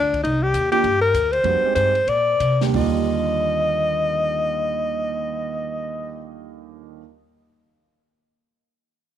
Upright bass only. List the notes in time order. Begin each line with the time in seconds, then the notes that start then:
Already playing: D2
0.24 C2
0.54 D#2
0.83 G2
1.14 D2
1.44 F2
1.62 muted upright bass stroke
1.76 G2
2.07 A#2
2.40 C3
2.74 D#2